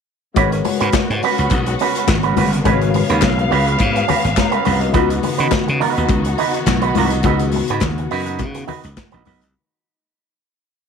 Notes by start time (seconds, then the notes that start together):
0.34 G#1 C#3 G#3 B3 C#4 F#4 A#4 B4 C#5, kick, closed hi-hat, muted conga
0.52 muted clean electric guitar stroke, closed hi-hat
0.65 muted clean electric guitar stroke, open hi-hat, muted conga
0.80 G#2 C#4 F#4 B4, closed hi-hat
0.92 muted clean electric guitar stroke, kick, snare, clap, closed hi-hat, high conga
1.10 G#2, muted clean electric guitar stroke, closed hi-hat
1.23 C#4 F#4 B4, open hi-hat
1.38 C#2 C#4 F#4 B4, closed hi-hat
1.50 B1, muted clean electric guitar stroke, kick, clap, closed hi-hat, muted conga
1.66 muted clean electric guitar stroke, closed hi-hat
1.79 C#4 F#4 B4, open hi-hat
1.95 C#4 F#4 B4, closed hi-hat
2.07 G#1, muted clean electric guitar stroke, kick, snare, clap, closed hi-hat, high conga
2.23 C#4 F#4 B4, closed hi-hat
2.37 G1 C#4 F#4 B4, open hi-hat, high conga
2.52 muted clean electric guitar stroke, closed hi-hat
2.64 G#1 G#3 C#4 F#4 A#4 B4 C#5 F5, kick, closed hi-hat, muted conga
2.81 muted clean electric guitar stroke, closed hi-hat
2.94 muted clean electric guitar stroke, open hi-hat, muted conga
3.10 D#2 C#4 F#4 B4, closed hi-hat
3.21 B1, kick, snare, clap, closed hi-hat, high conga
3.38 muted clean electric guitar stroke, closed hi-hat
3.51 C#2 C#4 F#4 B4, open hi-hat
3.67 C#4 F#4 B4, closed hi-hat
3.79 G#2, kick, clap, closed hi-hat, muted conga
3.96 muted clean electric guitar stroke, closed hi-hat
4.08 C#4 F#4 B4, open hi-hat, low conga
4.23 G#1, muted clean electric guitar stroke, closed hi-hat
4.36 C#5 A#5, muted clean electric guitar stroke, kick, snare, clap, closed hi-hat, high conga
4.51 C#4 F#4 A#4 B4 F#5, closed hi-hat
4.65 C2 C#4 F#4 B4, open hi-hat, high conga
4.80 F#4 D#5, muted clean electric guitar stroke, closed hi-hat
4.92 C#2 C#3 D#3 B3 D#4 F4 F#4 B4, kick, closed hi-hat, muted conga
5.02 F#4
5.10 muted clean electric guitar stroke, closed hi-hat
5.23 muted clean electric guitar stroke, open hi-hat, muted conga
5.38 C#3 D#4 F#4 B4, closed hi-hat
5.51 muted slap bass stroke, kick, snare, clap, closed hi-hat, high conga
5.67 C#3, muted clean electric guitar stroke, closed hi-hat
5.80 D#4 F#4 B4, open hi-hat, muted conga
5.96 D#2 D#4 F#4 B4, closed hi-hat
6.09 C#2, kick, clap, closed hi-hat, muted conga
6.25 muted clean electric guitar stroke, closed hi-hat
6.38 D#4 F#4 B4, open hi-hat
6.54 muted clean electric guitar stroke, closed hi-hat
6.66 B1, muted clean electric guitar stroke, kick, snare, clap, closed hi-hat, high conga
6.82 D#4 F#4 B4, closed hi-hat
6.95 C2 D#4 F#4 B4, open hi-hat, high conga
7.10 muted clean electric guitar stroke, closed hi-hat
7.23 C#2 C#3 B3 D#4 F#4 B4, kick, closed hi-hat, muted conga
7.39 muted clean electric guitar stroke, closed hi-hat
7.52 muted clean electric guitar stroke, open hi-hat, muted conga
7.68 G#2 D#4 F#4 B4, closed hi-hat
7.80 D#2, muted clean electric guitar stroke, kick, snare, clap, closed hi-hat, high conga
7.98 muted clean electric guitar stroke, closed hi-hat
8.11 F#2 D#4 F#4 B4, open hi-hat
8.26 D#4 F#4 B4, closed hi-hat
8.39 C#3, kick, clap, closed hi-hat, muted conga
8.55 muted clean electric guitar stroke, closed hi-hat
8.67 D#4 F#4 B4, open hi-hat, low conga
8.83 C#2, muted clean electric guitar stroke, closed hi-hat
8.97 muted clean electric guitar stroke, kick, snare, clap, closed hi-hat, high conga
9.12 A#1 D#4 F#4 B4, closed hi-hat, high conga
9.25 B1 D#4 F#4 B4, open hi-hat, high conga
9.42 C2, closed hi-hat